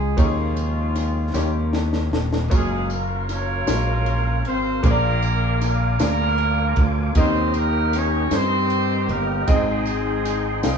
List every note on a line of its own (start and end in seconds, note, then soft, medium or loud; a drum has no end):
0.00 0.14 C#2 loud
0.00 0.19 G#3 medium
0.00 0.20 G#3 medium
0.00 0.20 C4 soft
0.00 0.17 C#4 soft
0.00 0.20 F4 soft
0.00 0.18 G4 medium
0.00 0.19 G#4 medium
0.17 1.30 D#2 loud
0.17 1.31 D#3 medium
0.17 1.74 F3 medium
0.17 1.70 G#3 medium
0.17 0.92 A#3 medium
0.17 0.92 C#4 medium
0.17 1.70 C#4 medium
0.17 0.92 D#4 medium
0.17 1.74 F4 medium
0.17 0.25 G4 medium
0.17 0.93 C#5 medium
0.17 kick loud
0.17 ride bell medium
0.17 tambourine soft
0.24 0.96 G#4 medium
0.56 ride bell soft
0.56 tambourine soft
0.95 snare soft
0.95 ride bell soft
0.95 tambourine medium
1.34 2.08 D#2 medium
1.34 2.47 D#3 medium
1.34 2.09 A#3 medium
1.34 2.09 C#4 medium
1.34 2.09 D#4 medium
1.34 2.09 G4 medium
1.34 2.09 C#5 medium
1.34 snare medium
1.34 tambourine medium
1.73 snare medium
1.93 snare medium
2.12 2.48 D#1 medium
2.12 snare loud
2.33 snare medium
2.50 3.64 F#1 medium
2.50 3.25 F#3 medium
2.50 3.25 A#3 medium
2.50 3.25 C#4 medium
2.50 3.25 F4 medium
2.50 4.81 A#4 medium
2.50 3.25 C#5 medium
2.50 7.12 F5 medium
2.50 kick loud
2.50 ride bell medium
2.50 tambourine soft
2.54 2.89 G#3 medium
2.54 3.32 C#4 medium
2.54 3.30 F4 medium
2.54 2.89 G#4 medium
2.90 3.29 A#3 medium
2.90 3.29 A#4 medium
2.90 ride bell soft
2.90 tambourine soft
3.29 4.08 C#4 loud
3.29 4.42 F4 medium
3.29 4.42 A#4 medium
3.29 4.08 C#5 loud
3.29 snare soft
3.29 ride bell medium
3.29 tambourine medium
3.66 4.44 A#1 medium
3.66 4.42 F#3 soft
3.66 3.73 G#3 soft
3.66 4.41 C#4 soft
3.66 4.41 F4 soft
3.66 4.42 C#5 medium
3.66 snare loud
3.66 ride bell medium
3.66 tambourine loud
3.72 4.44 A#3 medium
4.06 4.44 C#4 medium
4.06 4.44 C#5 medium
4.06 ride bell soft
4.44 4.80 G#1 medium
4.44 4.82 C4 medium
4.44 4.82 C5 loud
4.44 ride bell soft
4.83 5.96 A#1 loud
4.83 5.96 A#2 medium
4.83 5.57 A#3 medium
4.83 5.62 A#3 medium
4.83 5.57 D4 medium
4.83 5.96 D4 medium
4.83 5.58 F4 medium
4.83 5.96 F4 medium
4.83 5.58 G#4 medium
4.83 9.44 A#4 medium
4.83 5.62 A#4 medium
4.83 4.90 C5 medium
4.83 7.14 G#5 medium
4.83 7.14 D6 medium
4.83 kick loud
4.83 ride bell medium
4.83 tambourine soft
4.91 5.61 D5 medium
5.22 ride bell soft
5.22 tambourine soft
5.61 5.98 A#3 medium
5.61 5.98 A#4 medium
5.61 snare soft
5.61 ride bell medium
5.61 tambourine medium
5.99 6.73 D2 medium
5.99 6.74 A#3 medium
5.99 6.83 A#3 loud
5.99 6.74 D4 medium
5.99 7.13 D4 medium
5.99 6.74 F4 medium
5.99 7.13 F4 medium
5.99 6.74 G#4 soft
5.99 6.83 A#4 loud
5.99 6.74 D5 medium
5.99 snare loud
5.99 ride bell medium
5.99 tambourine loud
6.38 ride bell soft
6.76 7.13 D2 loud
6.76 kick loud
6.76 ride bell soft
7.15 8.28 D#2 loud
7.15 8.28 D#3 medium
7.15 7.53 C4 medium
7.15 7.90 C#4 medium
7.15 7.90 D#4 medium
7.15 7.90 G4 medium
7.15 8.29 G4 medium
7.15 7.91 A#4 medium
7.15 7.53 C5 loud
7.15 10.78 D#5 medium
7.15 7.91 D#5 medium
7.15 10.78 G5 medium
7.15 kick loud
7.15 ride bell medium
7.15 tambourine medium
7.54 7.94 A#3 medium
7.54 7.94 A#4 loud
7.54 ride bell soft
7.54 tambourine medium
7.93 8.33 C#4 loud
7.93 8.33 C#5 loud
7.93 snare soft
7.93 ride bell medium
7.93 tambourine medium
8.31 9.10 G2 medium
8.31 9.10 C4 loud
8.31 9.06 C#4 soft
8.31 9.06 D#4 soft
8.31 9.06 G4 medium
8.31 9.45 G4 medium
8.31 9.06 A#4 medium
8.31 9.07 C5 medium
8.31 9.10 C5 loud
8.31 snare loud
8.31 ride bell medium
8.31 tambourine loud
8.70 ride bell soft
9.08 9.44 G1 loud
9.08 9.48 A#3 medium
9.08 9.48 A#4 medium
9.08 ride bell soft
9.47 10.60 G#1 loud
9.47 10.60 G#2 medium
9.47 10.78 G#3 medium
9.47 10.22 C4 medium
9.47 10.78 C4 medium
9.47 10.22 D#4 medium
9.47 10.78 D#4 medium
9.47 10.22 G#4 medium
9.47 10.78 G#4 medium
9.47 10.22 D#5 loud
9.47 10.22 G5 medium
9.47 10.78 C6 medium
9.47 kick loud
9.47 ride bell medium
9.47 tambourine medium
9.86 ride bell soft
9.86 tambourine soft
10.25 snare soft
10.25 ride bell medium
10.25 tambourine medium
10.63 10.78 C2 medium
10.63 10.78 C4 medium
10.63 10.78 D#4 medium
10.63 10.78 G#4 medium
10.63 10.78 F5 medium
10.63 10.78 G5 medium
10.63 snare loud
10.63 ride bell medium
10.63 tambourine loud